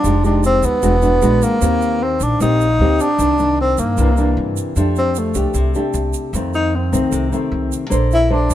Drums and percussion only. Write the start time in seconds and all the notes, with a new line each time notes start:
0.04 shaker
0.24 shaker
0.44 shaker
0.63 shaker
0.83 shaker
1.02 shaker
1.22 shaker
1.42 shaker
1.62 shaker
1.81 shaker
2.20 shaker
2.41 shaker
2.61 shaker
3.00 shaker
3.19 shaker
3.39 shaker
3.78 shaker
3.98 shaker
4.17 shaker
4.57 shaker
4.76 shaker
4.96 shaker
5.15 shaker
5.34 shaker
5.54 shaker
5.75 shaker
5.94 shaker
6.13 shaker
6.34 shaker
6.54 shaker
6.93 shaker
7.12 shaker
7.33 shaker
7.72 shaker
7.92 shaker
8.11 shaker
8.50 shaker